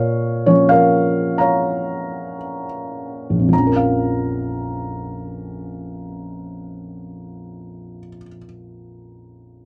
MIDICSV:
0, 0, Header, 1, 2, 480
1, 0, Start_track
1, 0, Key_signature, -5, "minor"
1, 0, Tempo, 898204
1, 740, Tempo, 1008403
1, 1220, Tempo, 1138520
1, 1700, Time_signature, 4, 2, 24, 8
1, 1700, Tempo, 1178782
1, 4192, End_track
2, 0, Start_track
2, 0, Title_t, "Felt piano"
2, 0, Program_c, 0, 0
2, 0, Control_c, 0, 64, 127
2, 0, Note_on_c, 0, 46, 50
2, 0, Note_on_c, 0, 70, 49
2, 0, Note_on_c, 0, 73, 52
2, 0, Note_on_c, 0, 77, 66
2, 240, Note_off_c, 0, 73, 0
2, 248, Note_on_c, 0, 53, 36
2, 248, Note_on_c, 0, 73, 61
2, 251, Note_on_c, 0, 58, 34
2, 251, Note_on_c, 0, 61, 44
2, 267, Note_off_c, 0, 77, 0
2, 368, Note_on_c, 0, 77, 81
2, 371, Note_off_c, 0, 73, 0
2, 374, Note_off_c, 0, 70, 0
2, 380, Note_on_c, 0, 73, 43
2, 382, Note_on_c, 0, 70, 46
2, 738, Note_on_c, 0, 82, 58
2, 740, Note_off_c, 0, 77, 0
2, 744, Note_off_c, 0, 73, 0
2, 747, Note_on_c, 0, 77, 45
2, 751, Note_on_c, 0, 73, 46
2, 1200, Note_off_c, 0, 82, 0
2, 1323, Note_off_c, 0, 70, 0
2, 1602, Note_on_c, 0, 34, 31
2, 1642, Note_on_c, 0, 41, 29
2, 1674, Note_off_c, 0, 53, 0
2, 1680, Note_on_c, 0, 53, 29
2, 1684, Note_off_c, 0, 46, 0
2, 1684, Note_off_c, 0, 58, 0
2, 1684, Note_off_c, 0, 61, 0
2, 1686, Note_off_c, 0, 77, 0
2, 1688, Note_off_c, 0, 73, 0
2, 1699, Note_on_c, 0, 82, 51
2, 1706, Control_c, 0, 64, 0
2, 1718, Note_on_c, 0, 61, 33
2, 1755, Note_on_c, 0, 70, 30
2, 1768, Control_c, 0, 64, 127
2, 1793, Note_on_c, 0, 77, 37
2, 3514, Note_off_c, 0, 34, 0
2, 3552, Note_off_c, 0, 41, 0
2, 3590, Note_off_c, 0, 53, 0
2, 3608, Note_off_c, 0, 82, 0
2, 3627, Note_off_c, 0, 61, 0
2, 3664, Note_off_c, 0, 70, 0
2, 3702, Note_off_c, 0, 77, 0
2, 4192, End_track
0, 0, End_of_file